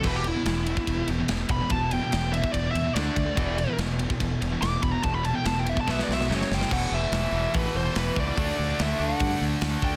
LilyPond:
<<
  \new Staff \with { instrumentName = "Lead electric guitar" } { \time 4/4 \key d \mixolydian \tempo 4 = 144 << { b'16 g'16 e'2 r4 b''8 | a''8 g''4 e''8 d''8 e''8 d''4~ | d''4 r2 d'''8 b''16 ais''16 | a''16 b''16 a''16 g''16 a''16 g''16 e''16 a''16 e''16 d''16 e''8 cis''4 |
r1 | r1 | } \\ { r1 | r1 | r1 | r2. r8 g''8 |
fis''8 e''4. b'8 c''8 b'8 d''8~ | d''4 e''8 fis''4 r4 g''8 | } >> }
  \new Staff \with { instrumentName = "Overdriven electric guitar" } { \clef bass \time 4/4 \key d \mixolydian <e, b, e>1 | <e, b, e>2. <d a d'>4 | <e, b, e>1 | <e, b, e>2 <b, fis b>4 <fis, cis fis>4 |
<e, b, e>1 | <d a d'>1 | }
  \new Staff \with { instrumentName = "Distorted electric guitar" } { \clef bass \time 4/4 \key d \mixolydian <e, b, e>8 <e, b,>16 <e, b,>16 <e, b,>8 <e, b,>16 <e, b,>16 <e, b,>8 <e, b,>16 <e, b,>16 <e, b,>8 <e, b,>16 <e, b,>16 | <e, b,>8 <e, b,>16 <e, b,>16 <e, b,>8 <e, b,>16 <e, b,>16 <e, b,>8 <e, b,>16 <e, b,>16 <d a d'>8 <d a>16 <d a>16 | <e, b, e>8 <e, b,>16 <e, b,>16 <e, b,>8 <e, b,>16 <e, b,>16 <e, b,>8 <e, b,>16 <e, b,>16 <e, b,>8 <e, b,>16 <e, b,>16 | <e, b,>8 <e, b,>16 <e, b,>16 <e, b,>8 <e, b,>16 <e, b,>16 <b, fis b>8 <b, fis>16 <b, fis>16 <fis, cis fis>8 <fis, cis>16 <fis, cis>16 |
<e, b, e>2.~ <e, b, e>8 <e, b, e>8 | <d a d'>2.~ <d a d'>8 <d a d'>8 | }
  \new Staff \with { instrumentName = "Distorted electric guitar" } { \clef bass \time 4/4 \key d \mixolydian <e, b, e>8 <e, b,>16 <e, b,>16 <e, b,>8 <e, b,>16 <e, b,>16 <e, b,>8 <e, b,>16 <e, b,>16 <e, b,>8 <e, b,>16 <e, b,>16 | <e, b,>8 <e, b,>16 <e, b,>16 <e, b,>8 <e, b,>16 <e, b,>16 <e, b,>8 <e, b,>16 <e, b,>16 <d a d'>8 <d a>16 <d a>16 | <e, b, e>8 <e, b,>16 <e, b,>16 <e, b,>8 <e, b,>16 <e, b,>16 <e, b,>8 <e, b,>16 <e, b,>16 <e, b,>8 <e, b,>16 <e, b,>16 | <e, b,>8 <e, b,>16 <e, b,>16 <e, b,>8 <e, b,>16 <e, b,>16 <b, fis b>8 <b, fis>16 <b, fis>16 <fis, cis fis>8 <fis, cis>16 <fis, cis>16 |
<e, b, e>4. <e, b, e>2~ <e, b, e>8 | <d a d'>4. <d a d'>2~ <d a d'>8 | }
  \new Staff \with { instrumentName = "Fingered electric bass" } { \clef bass \time 4/4 \key d \mixolydian e,,4 e,,4 e,,8 e,,8 e,,8 e,,8 | e,,4 e,,4 e,,8 e,8 d,8 d,8 | e,,4 e,,4 e,,8 e,,8 e,,8 e,,8 | e,,4 e,,4 b,,8 b,,8 fis,,8 fis,,8 |
e,,8 e,,8 e,,8 e,,8 a,,8 e,,8 e,,8 cis,8 | d,8 d,8 d,8 d,8 g,8 d,8 d,8 d,8 | }
  \new DrumStaff \with { instrumentName = "Drums" } \drummode { \time 4/4 <cymc bd>8 cymr8 <cymr sn>8 cymr16 bd16 <bd cymr>8 cymr8 <cymr sn>8 <bd cymr>8 | <bd cymr>8 cymr8 <cymr sn>8 cymr16 bd16 <bd cymr>8 cymr8 <cymr sn>8 <bd cymr>8 | <bd cymr>8 cymr8 <cymr sn>8 cymr16 bd16 <bd cymr>8 cymr8 <cymr sn>8 <bd cymr>8 | <bd cymr>8 cymr8 <cymr sn>8 cymr16 bd16 <bd sn>16 sn16 sn16 sn16 sn16 sn16 sn16 sn16 |
<cymc bd>4 <hho sn>4 <hho bd>4 <hho sn>8 bd8 | <hho bd>4 <hho sn>4 <hho bd>4 <hho sn>8 bd8 | }
>>